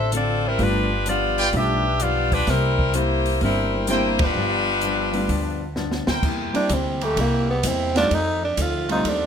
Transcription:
Already playing: A1 D4 E5
0.12 D3 A3 C4 F4 A4 D5, closed hi-hat
0.46 G3 C4 E4 A#4
0.59 G1 G2 F3 G3 A3 B3 D4 F4 B4, kick, open hi-hat
1.06 G2 F3 B3 D4 F4 G4 D5, closed hi-hat
1.38 F4 B4 D5 G5, open hi-hat
1.52 B1 G2 F3 G3 A3 B3 D4 F4 G4 B4 E5, kick, open hi-hat
2.00 G2 F3 B3 D4 F4 G4 D5, closed hi-hat
2.32 G3 D4 F4 B4, kick, open hi-hat
2.47 C2 C3 G3 A#3 C4 E4 A#4, kick, snare, open hi-hat
2.79 kick
2.94 C3 G3 A#3 E4 G4 C5, closed hi-hat
3.26 open hi-hat
3.41 G1 C3 G3 A#3 C4 D4 E4 A#4, kick, open hi-hat
3.87 C3 G3 A#3 C4 D4 E4 G4 A#4 C5 G5, closed hi-hat
4.19 G3 D4 F4 B4, kick, ride
4.35 G1 G2 F3 B3 D4
4.81 G2 F3 B3 D4, closed hi-hat
5.13 G3 A3 B3 D4 F4, open hi-hat
5.28 D2 G2 F3 B3 D4, kick, open hi-hat
5.76 G2 F3 B3 D4, snare
5.92 snare
6.07 D2 E4 A#4 C5 G5, snare
6.22 E2 C3 G3 A#3 E4, kick, crash
6.53 G3 A#3 C4 D4 E4, muted upright bass stroke, ride
6.69 D2 C3 G3 A#3 E4, kick, hi-hat pedal, ride
6.73 C4
7.01 E3 A3 A#3 C4 G4, ride
7.16 C2 C3 G3 A#3 E4, kick, ride
7.20 A#3
7.50 B3
7.63 E2 C3 G3 A#3 E4, kick, hi-hat pedal, ride
7.68 C4
7.95 D#3 G3 A3 C4 D4 D#4 F4, snare, ride
8.10 F2 D#3 A3 C4, kick, ride
8.14 D#4
8.44 D4
8.57 D2 F2 D#3 A3 C4, kick, hi-hat pedal, ride
8.62 F4
8.89 D#3 G3 A3 C4 D#4 F4, ride
9.05 D#2 F2 D#3 A3 C4, kick, ride
9.09 D4

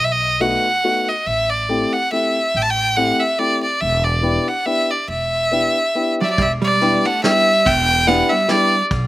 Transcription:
Already playing: B1
0.04 E5
0.12 D#5
0.40 A3 B3 D#4 F#4 F#5
0.84 A3 B3 D#4 F#4
1.08 D#5
1.26 A1 E5
1.49 D5
1.69 A3 C4 E4 G4
1.93 F#5
2.12 A3 C4 E4 G4 E5
2.55 A1 G5
2.62 A5
2.70 G5
2.96 A3 C4 E4 G4 F#5
3.20 E5
3.38 A3 C4 E4 G4 D5
3.63 D5
3.81 E1 E5
4.04 D5
4.22 B3 D4 E4 G4
4.48 F#5
4.66 B3 D4 E4 G4 E5
4.91 D5
5.08 E1 E5
5.51 B3 D4 E4 G4
5.95 B3 D4 E4 G4
6.21 F#3 G3 D5 E5
6.29 F#3 D5
6.38 E1 G3 E5, kick, ride
6.62 G3 D5, ride
6.81 B3 D4 E4 G4, ride
7.05 A3 F#5
7.24 G3 B3 D4 E4 G4 E5, snare, ride
7.66 E1 B3 G5, kick, ride
8.07 B3 D4 E4 G4 F#5, ride
8.29 G3 E5
8.48 G3 B3 D4 E4 G4 D5, snare, ride
8.91 B1, kick, ride

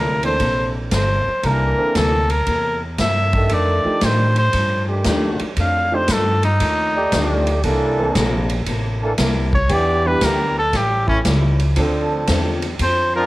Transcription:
Already playing: D2 C3 E3 A#3 D4 E4 A4 A#4
0.23 E3 A#3 C4 D4 A4 C5, ride
0.40 A#1 C3 A#3 E4 A4, kick, ride
0.91 G1 C3 A#3 E4 A4 C5, kick, snare, hi-hat pedal, ride
1.27 muted upright bass stroke
1.43 C2 C3 E3 A#3 D4 E4 A4 A#4, kick, ride
1.78 E3 A#3 C4 D4 A4
1.95 D2 C3 A#3 E4 A4, kick, snare, hi-hat pedal, ride
2.29 A#4, ride
2.46 E2 C3 A#3 E4 A4, kick, ride
2.98 G2 C3 A#3 E4 A4 E5, kick, snare, hi-hat pedal, ride
3.33 D#3 A3 D4 A4, kick, ride
3.49 F2 D#3 A3 D4 D5, kick, ride
3.85 F3 A3 D4 D#4 G4, muted upright bass stroke
4.01 F2 A2 D#3 A3 D4 C5, kick, snare, hi-hat pedal, ride
4.36 C5, ride
4.53 F2 G2 D#3 A3 D4, kick, ride
4.88 D#3 A3 D4 G4
5.04 D#2 F2 D#3 A3 D4, kick, snare, hi-hat pedal, ride
5.39 muted upright bass stroke, ride
5.56 F2 D#3 A3 D4, kick, ride
5.61 F5
5.92 F3 A3 D4 D#4 G4 C5
6.08 F2 G2 D#3 A3 D4, kick, snare, hi-hat pedal, ride
6.12 A4
6.43 D#4, ride
6.60 D#2 F2 D#3 A3 D4, kick, ride
6.95 A3 D#4 G4 D5
7.12 D2 F2 D#3 A3 D4, kick, snare, hi-hat pedal, ride
7.47 ride
7.63 C2 C3 E3 A#3 D4 E4 A4, kick, ride
7.98 E3 A#3 C4 D4 A4
8.15 A#1 C3 A#3 E4 A4, kick, snare, hi-hat pedal, ride
8.49 ride
8.66 A1 C3 A#3 E4 A4, kick, ride
9.01 E3 A#3 D4 A4
9.18 C2 C3 A#3 E4 A4, kick, snare, hi-hat pedal, ride
9.53 C#5, kick
9.69 E2 E3 B3 D4 G4, kick, ride
9.73 D5
10.04 E3 G3 B3 D4 G4 B4
10.21 D2 E3 B3 D4 G4 A#4, kick, snare, hi-hat pedal, ride
10.59 A4
10.73 A1 A2 G3 C#4 E4 G4, kick, snare, ride
11.07 E3 A3 C#4 E4, kick
11.25 C#2 A2 G3 C#4 E4, kick, snare, hi-hat pedal, ride
11.59 ride
11.76 D2 D3 F3 A3 C4 D4 F4 A4, kick, ride
12.27 E2 D3 C4 F4 A4, kick, snare, hi-hat pedal, ride
12.62 ride
12.79 F2 D3 C4 F4 A4 C5, kick, ride
13.15 F3 C4 D4 F4 A#4

